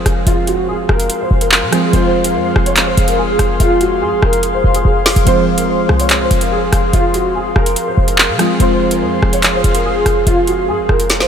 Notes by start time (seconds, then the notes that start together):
Already playing: F3 G#3 C4 F4 G#4 F5 C6
0.06 F1, cross-stick, closed hi-hat
0.27 F1 F4, closed hi-hat
0.47 F#4, closed hi-hat
0.68 G#4
0.89 F1 A#4, cross-stick
1.00 closed hi-hat
1.10 closed hi-hat
1.20 C5
1.31 F1
1.41 A#4, closed hi-hat
1.52 clap
1.62 C3
1.71 F3 G#3 C4 F4 G#4, cross-stick, closed hi-hat
1.91 F1 F3 G#3 C4 C5, closed hi-hat
1.96 F4
2.24 A#4, closed hi-hat
2.35 F2 C5
2.56 F1, cross-stick
2.66 C#5, closed hi-hat
2.76 clap, closed hi-hat
2.87 C5
2.97 F1, closed hi-hat
3.08 A#4, closed hi-hat
3.18 G#4
3.39 F1, cross-stick, closed hi-hat
3.60 F1 F4, closed hi-hat
3.81 F#4, closed hi-hat
4.02 G#2 G#4
4.12 F1
4.23 F1 A#4, cross-stick
4.33 closed hi-hat
4.43 closed hi-hat
4.54 C5
4.64 F1
4.74 G#4, closed hi-hat
4.85 F1
5.06 snare, closed hi-hat, open hi-hat
5.16 F1, closed hi-hat
5.24 F1 F3 G#3 C4 C5, closed hi-hat
5.30 F4
5.58 A#4, closed hi-hat
5.68 C5
5.89 C2, cross-stick
6.00 C#5, closed hi-hat
6.10 clap, closed hi-hat
6.20 C5
6.31 F1, closed hi-hat
6.41 A#4, closed hi-hat
6.52 G#4
6.73 F1, cross-stick, closed hi-hat
6.93 F1 F4, closed hi-hat
7.14 F#4, closed hi-hat
7.35 G#4
7.56 F1 A#4, cross-stick
7.66 closed hi-hat
7.76 closed hi-hat
7.87 C5
7.98 F1
8.08 A#4, closed hi-hat
8.18 clap
8.29 C3
8.38 F3 G#3 C4 F4 G#4, cross-stick, closed hi-hat
8.57 F1 F3 G#3 C4 G#4 C5 F5 C6, closed hi-hat
8.63 F4
8.91 A#4, closed hi-hat
9.02 F2 C5
9.23 F1, cross-stick
9.33 C#5, closed hi-hat
9.43 clap, closed hi-hat
9.54 C5
9.64 F1, closed hi-hat
9.75 A#4, closed hi-hat
9.85 G#4
10.06 F1, cross-stick, closed hi-hat
10.27 F1 F4, closed hi-hat
10.47 F#4, closed hi-hat
10.68 G#2 G#4
10.79 F1
10.89 F1 A#4, cross-stick
11.00 closed hi-hat
11.10 snare, closed hi-hat
11.20 C5, snare